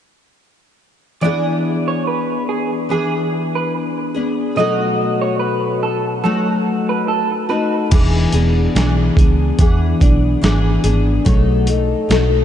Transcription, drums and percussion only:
0, 0, Header, 1, 2, 480
1, 0, Start_track
1, 0, Tempo, 835655
1, 705, Time_signature, 4, 2, 24, 8
1, 7148, End_track
2, 0, Start_track
2, 0, Title_t, "Drums"
2, 4547, Note_on_c, 9, 42, 76
2, 4547, Note_on_c, 9, 49, 68
2, 4548, Note_on_c, 9, 36, 83
2, 4604, Note_off_c, 9, 42, 0
2, 4605, Note_off_c, 9, 49, 0
2, 4606, Note_off_c, 9, 36, 0
2, 4782, Note_on_c, 9, 42, 65
2, 4839, Note_off_c, 9, 42, 0
2, 5033, Note_on_c, 9, 42, 81
2, 5035, Note_on_c, 9, 38, 105
2, 5091, Note_off_c, 9, 42, 0
2, 5092, Note_off_c, 9, 38, 0
2, 5266, Note_on_c, 9, 36, 74
2, 5276, Note_on_c, 9, 42, 62
2, 5324, Note_off_c, 9, 36, 0
2, 5334, Note_off_c, 9, 42, 0
2, 5506, Note_on_c, 9, 42, 85
2, 5508, Note_on_c, 9, 36, 86
2, 5564, Note_off_c, 9, 42, 0
2, 5565, Note_off_c, 9, 36, 0
2, 5751, Note_on_c, 9, 36, 82
2, 5754, Note_on_c, 9, 42, 58
2, 5809, Note_off_c, 9, 36, 0
2, 5811, Note_off_c, 9, 42, 0
2, 5995, Note_on_c, 9, 42, 73
2, 5997, Note_on_c, 9, 38, 95
2, 6053, Note_off_c, 9, 42, 0
2, 6054, Note_off_c, 9, 38, 0
2, 6226, Note_on_c, 9, 42, 61
2, 6283, Note_off_c, 9, 42, 0
2, 6468, Note_on_c, 9, 42, 70
2, 6469, Note_on_c, 9, 36, 85
2, 6526, Note_off_c, 9, 42, 0
2, 6527, Note_off_c, 9, 36, 0
2, 6703, Note_on_c, 9, 42, 64
2, 6760, Note_off_c, 9, 42, 0
2, 6954, Note_on_c, 9, 42, 79
2, 6956, Note_on_c, 9, 38, 99
2, 7012, Note_off_c, 9, 42, 0
2, 7013, Note_off_c, 9, 38, 0
2, 7148, End_track
0, 0, End_of_file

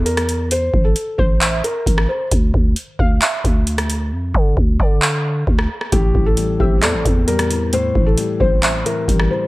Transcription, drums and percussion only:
0, 0, Header, 1, 2, 480
1, 0, Start_track
1, 0, Tempo, 451128
1, 544, Time_signature, 4, 2, 24, 8
1, 10079, End_track
2, 0, Start_track
2, 0, Title_t, "Drums"
2, 64, Note_on_c, 9, 42, 68
2, 170, Note_off_c, 9, 42, 0
2, 184, Note_on_c, 9, 37, 101
2, 184, Note_on_c, 9, 42, 68
2, 290, Note_off_c, 9, 42, 0
2, 291, Note_off_c, 9, 37, 0
2, 306, Note_on_c, 9, 42, 86
2, 412, Note_off_c, 9, 42, 0
2, 543, Note_on_c, 9, 42, 99
2, 649, Note_off_c, 9, 42, 0
2, 783, Note_on_c, 9, 36, 110
2, 890, Note_off_c, 9, 36, 0
2, 1019, Note_on_c, 9, 42, 76
2, 1125, Note_off_c, 9, 42, 0
2, 1263, Note_on_c, 9, 36, 96
2, 1370, Note_off_c, 9, 36, 0
2, 1504, Note_on_c, 9, 39, 120
2, 1504, Note_on_c, 9, 42, 86
2, 1610, Note_off_c, 9, 39, 0
2, 1610, Note_off_c, 9, 42, 0
2, 1748, Note_on_c, 9, 42, 68
2, 1854, Note_off_c, 9, 42, 0
2, 1983, Note_on_c, 9, 36, 99
2, 1990, Note_on_c, 9, 42, 83
2, 2089, Note_off_c, 9, 36, 0
2, 2097, Note_off_c, 9, 42, 0
2, 2104, Note_on_c, 9, 37, 97
2, 2211, Note_off_c, 9, 37, 0
2, 2463, Note_on_c, 9, 42, 96
2, 2464, Note_on_c, 9, 36, 107
2, 2569, Note_off_c, 9, 42, 0
2, 2570, Note_off_c, 9, 36, 0
2, 2704, Note_on_c, 9, 36, 109
2, 2810, Note_off_c, 9, 36, 0
2, 2939, Note_on_c, 9, 42, 78
2, 3045, Note_off_c, 9, 42, 0
2, 3184, Note_on_c, 9, 36, 101
2, 3290, Note_off_c, 9, 36, 0
2, 3423, Note_on_c, 9, 39, 123
2, 3424, Note_on_c, 9, 42, 81
2, 3530, Note_off_c, 9, 39, 0
2, 3530, Note_off_c, 9, 42, 0
2, 3664, Note_on_c, 9, 36, 100
2, 3668, Note_on_c, 9, 42, 66
2, 3771, Note_off_c, 9, 36, 0
2, 3774, Note_off_c, 9, 42, 0
2, 3904, Note_on_c, 9, 42, 68
2, 4010, Note_off_c, 9, 42, 0
2, 4024, Note_on_c, 9, 37, 99
2, 4024, Note_on_c, 9, 42, 70
2, 4130, Note_off_c, 9, 37, 0
2, 4130, Note_off_c, 9, 42, 0
2, 4145, Note_on_c, 9, 42, 87
2, 4252, Note_off_c, 9, 42, 0
2, 4623, Note_on_c, 9, 36, 108
2, 4730, Note_off_c, 9, 36, 0
2, 4863, Note_on_c, 9, 36, 94
2, 4969, Note_off_c, 9, 36, 0
2, 5103, Note_on_c, 9, 36, 100
2, 5210, Note_off_c, 9, 36, 0
2, 5343, Note_on_c, 9, 39, 120
2, 5450, Note_off_c, 9, 39, 0
2, 5823, Note_on_c, 9, 36, 98
2, 5929, Note_off_c, 9, 36, 0
2, 5944, Note_on_c, 9, 37, 99
2, 6050, Note_off_c, 9, 37, 0
2, 6184, Note_on_c, 9, 37, 75
2, 6290, Note_off_c, 9, 37, 0
2, 6302, Note_on_c, 9, 42, 97
2, 6303, Note_on_c, 9, 36, 110
2, 6409, Note_off_c, 9, 42, 0
2, 6410, Note_off_c, 9, 36, 0
2, 6543, Note_on_c, 9, 36, 104
2, 6650, Note_off_c, 9, 36, 0
2, 6779, Note_on_c, 9, 42, 76
2, 6885, Note_off_c, 9, 42, 0
2, 7023, Note_on_c, 9, 36, 100
2, 7130, Note_off_c, 9, 36, 0
2, 7263, Note_on_c, 9, 39, 122
2, 7263, Note_on_c, 9, 42, 83
2, 7369, Note_off_c, 9, 39, 0
2, 7370, Note_off_c, 9, 42, 0
2, 7504, Note_on_c, 9, 36, 96
2, 7507, Note_on_c, 9, 42, 67
2, 7610, Note_off_c, 9, 36, 0
2, 7614, Note_off_c, 9, 42, 0
2, 7743, Note_on_c, 9, 42, 70
2, 7850, Note_off_c, 9, 42, 0
2, 7863, Note_on_c, 9, 42, 71
2, 7864, Note_on_c, 9, 37, 101
2, 7970, Note_off_c, 9, 37, 0
2, 7970, Note_off_c, 9, 42, 0
2, 7986, Note_on_c, 9, 42, 86
2, 8092, Note_off_c, 9, 42, 0
2, 8222, Note_on_c, 9, 42, 93
2, 8329, Note_off_c, 9, 42, 0
2, 8463, Note_on_c, 9, 36, 107
2, 8569, Note_off_c, 9, 36, 0
2, 8698, Note_on_c, 9, 42, 75
2, 8804, Note_off_c, 9, 42, 0
2, 8943, Note_on_c, 9, 36, 97
2, 9049, Note_off_c, 9, 36, 0
2, 9183, Note_on_c, 9, 39, 124
2, 9183, Note_on_c, 9, 42, 85
2, 9289, Note_off_c, 9, 39, 0
2, 9289, Note_off_c, 9, 42, 0
2, 9427, Note_on_c, 9, 42, 66
2, 9533, Note_off_c, 9, 42, 0
2, 9662, Note_on_c, 9, 36, 97
2, 9670, Note_on_c, 9, 42, 80
2, 9769, Note_off_c, 9, 36, 0
2, 9776, Note_off_c, 9, 42, 0
2, 9784, Note_on_c, 9, 37, 98
2, 9890, Note_off_c, 9, 37, 0
2, 10079, End_track
0, 0, End_of_file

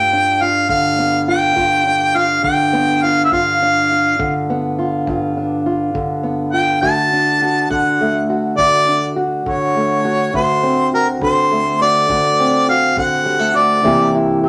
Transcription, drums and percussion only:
0, 0, Header, 1, 2, 480
1, 0, Start_track
1, 0, Tempo, 584795
1, 2726, Time_signature, 12, 3, 24, 8
1, 11893, End_track
2, 0, Start_track
2, 0, Title_t, "Drums"
2, 568, Note_on_c, 9, 36, 67
2, 650, Note_off_c, 9, 36, 0
2, 1286, Note_on_c, 9, 36, 59
2, 1368, Note_off_c, 9, 36, 0
2, 2005, Note_on_c, 9, 36, 64
2, 2087, Note_off_c, 9, 36, 0
2, 2725, Note_on_c, 9, 36, 64
2, 2807, Note_off_c, 9, 36, 0
2, 3445, Note_on_c, 9, 36, 72
2, 3527, Note_off_c, 9, 36, 0
2, 4165, Note_on_c, 9, 36, 68
2, 4247, Note_off_c, 9, 36, 0
2, 4884, Note_on_c, 9, 36, 70
2, 4966, Note_off_c, 9, 36, 0
2, 5603, Note_on_c, 9, 36, 61
2, 5685, Note_off_c, 9, 36, 0
2, 6325, Note_on_c, 9, 36, 66
2, 6407, Note_off_c, 9, 36, 0
2, 7046, Note_on_c, 9, 36, 67
2, 7129, Note_off_c, 9, 36, 0
2, 7768, Note_on_c, 9, 36, 64
2, 7850, Note_off_c, 9, 36, 0
2, 8487, Note_on_c, 9, 36, 68
2, 8569, Note_off_c, 9, 36, 0
2, 9206, Note_on_c, 9, 36, 68
2, 9288, Note_off_c, 9, 36, 0
2, 9926, Note_on_c, 9, 36, 66
2, 10008, Note_off_c, 9, 36, 0
2, 10646, Note_on_c, 9, 36, 70
2, 10728, Note_off_c, 9, 36, 0
2, 11367, Note_on_c, 9, 36, 58
2, 11449, Note_off_c, 9, 36, 0
2, 11893, End_track
0, 0, End_of_file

